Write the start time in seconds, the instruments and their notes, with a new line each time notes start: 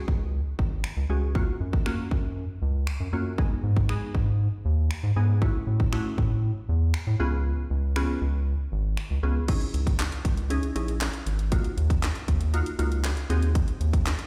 Already playing: synth pluck G#3 C#4 F#4 G#4
0.08 analog synth bass C#2, kick
0.59 analog synth bass G#1, kick
0.84 finger snap
0.97 analog synth bass C#2
1.10 analog synth bass C#2, synth pluck G#3 C#4 F#4 G#4
1.35 synth pluck A#3 C#4 F4 F#4, kick
1.60 analog synth bass F#2
1.73 kick
1.86 synth pluck A#3 C#4 F4 F#4, finger snap
2.11 analog synth bass F#2, kick
2.62 analog synth bass C#2
2.87 finger snap
3.00 analog synth bass F#2
3.13 analog synth bass F#2, synth pluck A#3 C#4 F4 F#4
3.38 synth pluck G#3 B3 D#4 G#4, kick
3.63 analog synth bass G#2
3.77 kick
3.89 synth pluck G#3 B3 D#4 G#4, finger snap
4.15 analog synth bass G#2, kick
4.65 analog synth bass D#2
4.91 finger snap
5.03 analog synth bass G#2
5.16 analog synth bass G#2, synth pluck G#3 B3 D#4 G#4
5.42 synth pluck A3 C#4 E4 F#4, kick
5.67 analog synth bass A2
5.80 kick
5.93 synth pluck A3 C#4 E4 F#4, finger snap
6.18 analog synth bass A2, kick
6.69 analog synth bass E2
6.94 finger snap
7.07 analog synth bass A2
7.20 analog synth bass C#2, synth pluck B3 C#4 F4 G#4
7.70 analog synth bass C#2
7.96 synth pluck B3 C#4 F4 G#4, finger snap
8.21 analog synth bass C#2
8.72 analog synth bass G#1
8.97 finger snap
9.10 analog synth bass C#2
9.23 analog synth bass C#2, synth pluck B3 C#4 F4 G#4
9.48 synth pluck C#4 D#4 E4 G#4, kick, closed hi-hat, crash
9.61 closed hi-hat
9.74 analog synth bass C#2, closed hi-hat
9.87 kick, closed hi-hat
10.00 snare, clap, closed hi-hat
10.12 closed hi-hat
10.25 analog synth bass C#2, kick, closed hi-hat
10.37 closed hi-hat
10.50 synth pluck C#4 D#4 E4 G#4, closed hi-hat
10.63 closed hi-hat
10.76 analog synth bass A#1, synth pluck C#4 D#4 E4 G#4, closed hi-hat
10.88 closed hi-hat
11.01 snare, clap, closed hi-hat
11.13 closed hi-hat
11.26 analog synth bass G#1, closed hi-hat
11.39 closed hi-hat
11.52 synth pluck A#3 D#4 F4 F#4, kick, closed hi-hat
11.64 closed hi-hat
11.77 analog synth bass D#2, closed hi-hat
11.90 kick, closed hi-hat
12.03 snare, clap, closed hi-hat
12.15 closed hi-hat
12.28 analog synth bass D#2, kick, closed hi-hat
12.41 closed hi-hat
12.54 synth pluck A#3 D#4 F4 F#4, closed hi-hat
12.66 closed hi-hat
12.79 analog synth bass C#2, synth pluck A#3 D#4 F4 F#4, closed hi-hat
12.92 closed hi-hat
13.04 snare, clap, closed hi-hat
13.17 closed hi-hat
13.30 analog synth bass D#2, synth pluck C4 D#4 F#4 G#4, closed hi-hat
13.43 closed hi-hat
13.55 kick, closed hi-hat
13.68 closed hi-hat
13.81 analog synth bass D#2, closed hi-hat
13.93 kick, closed hi-hat
14.06 snare, clap, closed hi-hat
14.19 closed hi-hat